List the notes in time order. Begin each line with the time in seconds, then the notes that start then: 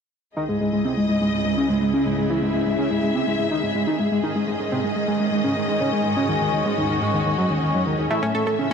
0.36 C#2 C#3 C#4 D#4 E4 G#4 D#5
0.49 G#3
0.61 G#3
0.73 G#3 G#4
0.85 C4
0.97 G#3
1.09 G#3
1.21 G#3
1.33 G#3
1.45 G#3 E4
1.57 C#4
1.70 G#3
1.82 G#3
1.94 C#4
2.06 G#3
2.18 G#3
2.30 E4 E5
2.42 G#3
2.54 G#3
2.66 G#3
2.78 C#4
2.91 G#3
3.03 G#3
3.15 C4
3.27 G#3
3.39 G#3
3.51 D#4
3.63 G#3
3.75 G#3
3.87 D#4
3.99 G#3
4.12 G#3
4.23 G#2 D#3 C#4 D#4 D#5
4.36 G#3
4.48 G#3 C#6
4.60 G#3
4.72 C4
4.76 D#5
4.84 G#3 G#5
4.96 G#3
5.08 G#3
5.20 G#3
5.32 G#3
5.44 C#4
5.56 G#3
5.68 G#3
5.80 C#4
5.93 G#3
6.05 G#3
6.17 C#4 F#4
6.29 D#3
6.41 D#3
6.53 D#3
6.65 G#3
6.77 D#3
6.90 D#3
7.02 G#3
7.14 D#3
7.26 D#3
7.38 F#3
7.50 D#3
7.62 D#3
7.74 F#3
7.86 D#3
7.99 D#3
8.10 A2 E3 A3 E4 A4 E5
8.23 A3 C#4
8.35 A3 A4
8.42 E5
8.47 A3 A4
8.59 C#4